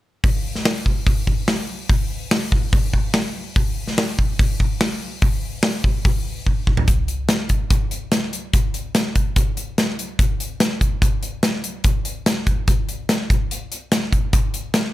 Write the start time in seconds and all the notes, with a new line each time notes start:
0.24 kick, open hi-hat
0.55 snare
0.65 snare, open hi-hat
0.86 kick
1.06 kick, open hi-hat
1.27 kick
1.48 snare, open hi-hat
1.89 kick, open hi-hat
2.31 snare, open hi-hat
2.52 kick
2.73 kick, open hi-hat
2.94 kick
3.14 snare, open hi-hat
3.56 kick, open hi-hat
3.87 snare
3.98 snare, open hi-hat
4.19 kick
4.39 kick, open hi-hat
4.60 kick
4.81 snare, open hi-hat
5.22 kick, open hi-hat
5.63 snare, open hi-hat
5.84 kick
6.05 kick, open hi-hat
6.47 kick
6.67 kick
6.77 floor tom
6.88 kick, closed hi-hat
7.08 closed hi-hat
7.29 snare, closed hi-hat
7.49 kick, closed hi-hat
7.70 kick, closed hi-hat
7.91 closed hi-hat
8.12 snare, closed hi-hat
8.33 closed hi-hat
8.53 kick, closed hi-hat
8.74 closed hi-hat
8.95 snare, closed hi-hat
9.15 kick, closed hi-hat
9.36 kick, closed hi-hat
9.57 closed hi-hat
9.78 snare, closed hi-hat
9.99 closed hi-hat
10.19 kick, closed hi-hat
10.40 closed hi-hat
10.60 snare, closed hi-hat
10.81 kick, closed hi-hat
11.02 kick, closed hi-hat
11.23 closed hi-hat
11.43 snare, closed hi-hat
11.64 closed hi-hat
11.84 kick, closed hi-hat
12.05 closed hi-hat
12.26 snare, closed hi-hat
12.47 kick, closed hi-hat
12.68 kick, closed hi-hat
12.89 closed hi-hat
13.09 snare, closed hi-hat
13.30 kick, closed hi-hat
13.51 closed hi-hat
13.72 closed hi-hat
13.92 snare, closed hi-hat
14.12 kick, closed hi-hat
14.33 kick, closed hi-hat
14.54 closed hi-hat
14.74 snare, closed hi-hat